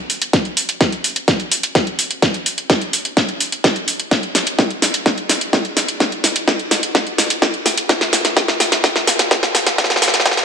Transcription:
0.10 open hi-hat
0.22 closed hi-hat
0.33 kick, snare, closed hi-hat
0.45 closed hi-hat
0.57 open hi-hat
0.69 closed hi-hat
0.81 kick, snare, closed hi-hat
0.92 closed hi-hat
1.04 open hi-hat
1.16 closed hi-hat
1.28 kick, snare, closed hi-hat
1.40 closed hi-hat
1.52 open hi-hat
1.63 closed hi-hat
1.75 kick, snare, closed hi-hat
1.87 closed hi-hat
1.99 open hi-hat
2.11 closed hi-hat
2.22 kick, snare, closed hi-hat
2.34 closed hi-hat
2.46 open hi-hat
2.58 closed hi-hat
2.70 kick, snare, closed hi-hat
2.81 closed hi-hat
2.93 open hi-hat
3.05 closed hi-hat
3.17 kick, snare, closed hi-hat
3.29 closed hi-hat
3.41 open hi-hat
3.52 closed hi-hat
3.64 kick, snare, closed hi-hat
3.76 closed hi-hat
3.88 open hi-hat
4.00 closed hi-hat
4.11 kick, snare, closed hi-hat
4.23 closed hi-hat
4.35 snare, open hi-hat
4.47 closed hi-hat
4.59 kick, snare, closed hi-hat
4.70 closed hi-hat
4.82 snare, open hi-hat
4.94 closed hi-hat
5.06 kick, snare, closed hi-hat
5.18 closed hi-hat
5.29 snare, open hi-hat
5.41 closed hi-hat
5.53 kick, snare, closed hi-hat
5.65 closed hi-hat
5.77 snare, open hi-hat
5.88 closed hi-hat
6.00 kick, snare, closed hi-hat
6.12 closed hi-hat
6.24 snare, open hi-hat
6.36 closed hi-hat
6.48 kick, snare, closed hi-hat
6.59 closed hi-hat
6.71 snare, open hi-hat
6.83 closed hi-hat
6.95 kick, snare, closed hi-hat
7.07 closed hi-hat
7.18 snare, open hi-hat
7.30 closed hi-hat
7.42 kick, snare, closed hi-hat
7.54 closed hi-hat
7.66 snare, open hi-hat
7.77 closed hi-hat
7.89 kick, snare, closed hi-hat
8.01 snare, closed hi-hat
8.13 snare, open hi-hat
8.25 snare, closed hi-hat
8.37 kick, snare, closed hi-hat
8.48 snare, closed hi-hat
8.60 snare, open hi-hat
8.72 snare, closed hi-hat
8.84 kick, snare, closed hi-hat
8.96 snare, closed hi-hat
9.07 snare, open hi-hat
9.19 snare, closed hi-hat
9.31 kick, snare, closed hi-hat
9.43 snare, closed hi-hat
9.55 snare, open hi-hat
9.67 snare, closed hi-hat
9.78 kick, snare, closed hi-hat
9.84 snare
9.90 snare, closed hi-hat
9.96 snare
10.02 snare, open hi-hat
10.08 snare
10.14 snare, closed hi-hat
10.20 snare
10.26 kick, snare, closed hi-hat
10.31 snare
10.37 snare, closed hi-hat

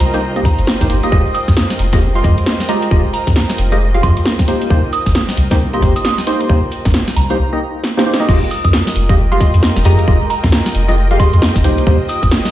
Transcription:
Already playing: F4 A#4 C5 D#5 G5
0.00 C2 A#5, open hi-hat, cabasa
0.13 A#3 D#4 G4 C5 A#5, closed hi-hat, cabasa
0.22 cabasa
0.36 A#3 D#4 G4 D#5, closed hi-hat
0.45 A#5, kick, open hi-hat, cabasa
0.58 G1, closed hi-hat, cabasa
0.67 snare, cabasa
0.81 C2 A#3 D#4 G4 C5, kick, snare, cabasa
0.89 G1 A#3 D#4 G4 C5, open hi-hat, cabasa
1.03 A#3 D#4 G4 D#5 D#6, closed hi-hat, cabasa
1.12 F1 G#3 F4 G4 D#5, kick, cabasa
1.26 cabasa
1.34 D#6, open hi-hat, cabasa
1.48 F2 D#6, kick, snare, closed hi-hat, cabasa
1.57 snare, cabasa
1.70 snare, closed hi-hat
1.79 F1, open hi-hat, cabasa
1.93 G#3 F4 G4 D#5, kick, snare, closed hi-hat, cabasa
2.02 cabasa
2.15 G#3 F4 G4 F5 C6, closed hi-hat
2.24 F2 G#3 F4 G4 D#5, kick, open hi-hat, cabasa
2.38 closed hi-hat, cabasa
2.46 snare, cabasa
2.60 snare, cabasa
2.69 G#3 F4 G4 D#5 A#5, open hi-hat, cabasa
2.82 closed hi-hat, cabasa
2.91 F1 G#3 F4 G4 D#5, kick, cabasa
3.06 cabasa
3.13 A#5, open hi-hat, cabasa
3.27 F2, kick, snare, closed hi-hat, cabasa
3.36 snare, cabasa
3.50 snare, closed hi-hat
3.58 F1, open hi-hat, cabasa
3.72 G#3 F4 G4 D#5, closed hi-hat, cabasa
3.81 cabasa
3.94 G#3 F4 G4 F5, closed hi-hat
4.03 F2 G#3 F4 G4 D#5 C6, kick, open hi-hat, cabasa
4.17 C6, closed hi-hat, cabasa
4.26 snare, cabasa
4.39 kick, snare, cabasa
4.48 A#3 D#4 G4 C5, open hi-hat, cabasa
4.62 closed hi-hat, cabasa
4.70 C2 A#3 D#4 G4 C5, kick, cabasa
4.84 cabasa
4.93 D#6, open hi-hat, cabasa
5.06 G1 D#6, kick, snare, closed hi-hat, cabasa
5.15 snare, cabasa
5.29 snare, closed hi-hat
5.37 C2, open hi-hat, cabasa
5.51 A#3 D#4 G4 C5, kick, snare, closed hi-hat, cabasa
5.60 cabasa
5.73 A#3 D#4 G4 D#5 C6, closed hi-hat
5.82 G1 A#3 D#4 G4 C5, kick, open hi-hat, cabasa
5.96 D#6, closed hi-hat, cabasa
6.05 D#6, snare, cabasa
6.18 snare, cabasa
6.27 A#3 D#4 G4 C5 C6, open hi-hat, cabasa
6.40 C6, closed hi-hat, cabasa
6.49 C2 A#3 D#4 G4 C5, kick, cabasa
6.63 cabasa
6.72 open hi-hat, cabasa
6.85 G1, kick, snare, closed hi-hat, cabasa
6.94 snare, cabasa
7.08 snare, closed hi-hat, cabasa
7.16 C2 A#5, open hi-hat, cabasa
7.30 A#3 D#4 G4 C5 A#5, closed hi-hat, cabasa
7.53 A#3 D#4 G4 D#5
7.84 snare
7.97 A#3 D#4 G4 C5, snare
8.06 A#3 D#4 G4 C5
8.14 snare
8.20 A#3 D#4 G4 D#5
8.28 F1 G#3 F4 G4 D#5, kick, crash, cabasa
8.37 A#4
8.42 cabasa
8.51 D#6, open hi-hat, cabasa
8.65 F2 D#6, kick, closed hi-hat, cabasa
8.73 snare, cabasa
8.87 snare, closed hi-hat
8.96 F1, open hi-hat, cabasa
9.00 G5
9.09 G#3 F4 G4 D#5, kick, closed hi-hat, cabasa
9.19 cabasa
9.29 G#3 F4 G4 D#5 F5 C6, closed hi-hat
9.40 G#3 F4 G4 D#5, kick, open hi-hat, cabasa
9.54 F2, closed hi-hat, cabasa
9.63 snare, cabasa
9.76 F1, snare, cabasa
9.84 F2 G#3 F4 G4 D#5 A#5, open hi-hat, cabasa
9.99 closed hi-hat, cabasa
10.08 F1 G#3 F4 G4 D#5, kick, cabasa
10.21 cabasa
10.30 A#5, open hi-hat, cabasa
10.44 F2, kick, snare, closed hi-hat, cabasa
10.52 snare, cabasa
10.66 snare, closed hi-hat
10.75 F1, open hi-hat, cabasa
10.88 G#3 F4 G4 D#5, closed hi-hat, cabasa
10.98 cabasa
11.11 G#3 F4 G4 F5, closed hi-hat
11.20 G#3 F4 G4 D#5 C6, kick, open hi-hat, cabasa
11.33 F2 C6, closed hi-hat, cabasa
11.42 snare, cabasa
11.56 F1, kick, snare, cabasa
11.64 C2 A#3 D#4 G4 C5, open hi-hat, cabasa
11.78 closed hi-hat, cabasa
11.86 C2 A#3 D#4 G4 C5, kick, cabasa
12.01 cabasa
12.08 D#6, open hi-hat, cabasa
12.23 G1 D#6, kick, closed hi-hat, cabasa
12.31 snare, cabasa
12.45 snare, closed hi-hat

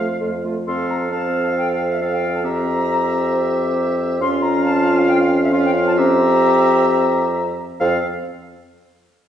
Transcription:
Already playing: F2 F5
0.20 F2 A3 F4
0.44 A3 F4
0.67 F2 C4 A4 F5 C6
0.90 A#5
1.12 C4 A4 F5 A5
1.47 F5
1.57 G5
1.69 F5
1.91 E5
2.01 C4 A4 F5
2.14 G5
2.35 A5
2.44 C4 G4 E5 A#5
4.21 F2 C#4 F4 F5 C6
4.42 A#5
4.65 A5
4.98 F5
5.09 G5
5.20 F5
5.43 E5
5.53 C#4 F4 F5
5.65 G5
5.87 A5
5.97 C4 G4 E5 A#5
7.80 F2 C4 A4 F5

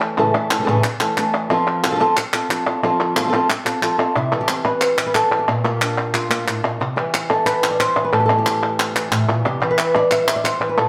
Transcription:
Already playing: E3 A3 C#4 A4
0.18 A2 C#3 E3 A3 C#4 A4, clap
0.35 E3 A3 C#4 A4, clap
0.51 E3 A3 C#4 A4, clap
0.59 C#3 E3 A3 C#4 A4
0.64 C#3 E3 A3 C#4 A4
0.68 A2 C#3 E3 A3 C#4 A4
0.84 muted nylon-string guitar stroke, clap
1.00 E3 A3 C#4 A4, clap
1.17 E3 A3 C#4 A4, clap
1.50 F3 C4 F4 A4, clap
1.67 clap
1.83 F3 C4 F4 A4, clap
1.87 F3 C4 F4 A4
1.91 F3 F4 A4
1.96 F3 C4 F4 A4
2.00 C4 F4 A4
2.17 muted nylon-string guitar stroke, clap
2.33 C4 F4 A4, clap
2.49 F3 C4 F4 A4, clap
2.66 C4 F4 A4
2.83 F3 C4 F4 A4, clap
3.00 clap
3.16 F3 C4 F4 A4, clap
3.20 F3 F4 A4
3.24 F3 C4 F4 A4
3.29 C4 F4 A4
3.33 F3 C4 F4 A4, clap
3.49 muted nylon-string guitar stroke, clap
3.65 C4 F4 A4, clap
3.82 F3 C4 F4 A4, clap
3.98 C4 F4 A4, clap
4.16 C3 E4, clap
4.32 E3 A4, clap
4.41 G4
4.48 C4, clap
4.65 B4, clap
4.81 C5, clap
4.98 E3, clap
5.07 B4
5.15 A4, clap
5.31 E3, clap
5.39 G4
5.48 A#2 F4, clap
5.64 A#3 G4, clap
5.81 D4, clap
6.14 F4, clap
6.30 A#3, clap
6.47 A2, clap
6.63 A#2, clap
6.80 C3, clap
6.96 E3 G4, clap
7.14 E4, clap
7.30 A4
7.46 B4, clap
7.64 E3, clap
7.71 D5
7.80 C5, clap
7.97 E3
8.04 B4
8.13 A2 A4, clap
8.20 G4
8.26 E3 A4, clap
8.38 G4
8.46 G4, clap
8.63 clap
8.80 clap
8.95 E3, clap
9.11 A2, clap
9.29 A#2
9.45 C3 G4, clap
9.60 E3, clap
9.71 B4
9.78 E4, clap
9.96 D5
10.11 E5, clap
10.27 E3, clap
10.36 D5
10.44 C5, clap
10.60 E3, clap
10.69 B4
10.77 A#2 A4, clap

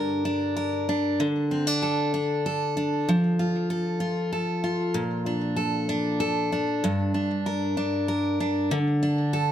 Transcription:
Already playing: G2 D3 D4 A#4
0.25 D4
0.56 A#4
0.89 D4
1.20 D3
1.51 C4
1.67 D4
1.83 A4
2.14 D4
2.46 A4
2.77 D4
3.09 F3
3.39 F4
3.70 A4
4.00 F4
4.33 A4
4.64 F4
4.94 A#2
5.26 D4
5.56 A4
5.89 D4
6.20 A4
6.52 D4
6.84 G2
7.14 D4
7.46 A#4
7.77 D4
8.08 A#4
8.40 D4
8.71 D3
9.03 D4
9.33 A4

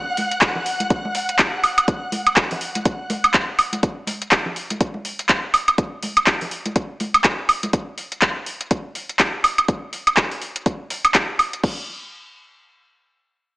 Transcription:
Already playing: F#5 F#6
0.17 open hi-hat, high conga
0.31 closed hi-hat
0.41 kick, clap, closed hi-hat
0.55 low conga
0.66 open hi-hat
0.80 closed hi-hat, high conga
0.90 kick, closed hi-hat
1.05 high conga
1.15 open hi-hat
1.29 closed hi-hat
1.39 kick, clap, closed hi-hat
1.64 open hi-hat, high woodblock
1.78 closed hi-hat, high woodblock
1.88 kick, closed hi-hat
2.12 open hi-hat, high conga
2.27 closed hi-hat, high woodblock
2.36 kick, clap, closed hi-hat
2.51 open hi-hat, low conga
2.61 open hi-hat
2.75 closed hi-hat, high conga
2.85 kick, closed hi-hat
3.10 open hi-hat, high conga
3.24 closed hi-hat, high woodblock
3.34 kick, clap, closed hi-hat
3.59 open hi-hat, high woodblock
3.72 closed hi-hat, high conga
3.83 kick, closed hi-hat
4.07 open hi-hat, high conga
4.22 closed hi-hat
4.31 kick, clap, closed hi-hat
4.46 low conga
4.56 open hi-hat
4.70 closed hi-hat, high conga
4.81 kick, closed hi-hat
4.94 high conga
5.05 open hi-hat
5.19 closed hi-hat
5.29 kick, clap, closed hi-hat
5.54 open hi-hat, high woodblock
5.68 closed hi-hat, high woodblock
5.78 kick, closed hi-hat
6.03 open hi-hat, high conga
6.17 closed hi-hat, high woodblock
6.27 kick, clap, closed hi-hat
6.41 open hi-hat, low conga
6.51 open hi-hat
6.66 closed hi-hat, high conga
6.76 kick, closed hi-hat
7.00 open hi-hat, high conga
7.14 closed hi-hat, high woodblock
7.24 kick, clap, closed hi-hat
7.49 open hi-hat, high woodblock
7.63 closed hi-hat, high conga
7.73 kick, closed hi-hat
7.98 open hi-hat
8.12 closed hi-hat
8.22 kick, clap, closed hi-hat
8.46 open hi-hat
8.61 closed hi-hat
8.71 kick, closed hi-hat
8.95 open hi-hat
9.09 closed hi-hat
9.19 kick, clap, closed hi-hat
9.44 open hi-hat, high woodblock
9.58 closed hi-hat, high woodblock
9.68 kick, closed hi-hat
9.93 open hi-hat
10.07 closed hi-hat, high woodblock
10.17 kick, clap, closed hi-hat
10.31 open hi-hat
10.42 open hi-hat
10.56 closed hi-hat
10.66 kick, closed hi-hat
10.90 open hi-hat
11.05 closed hi-hat, high woodblock
11.14 kick, clap, closed hi-hat
11.39 open hi-hat, high woodblock
11.53 closed hi-hat
11.64 kick, crash

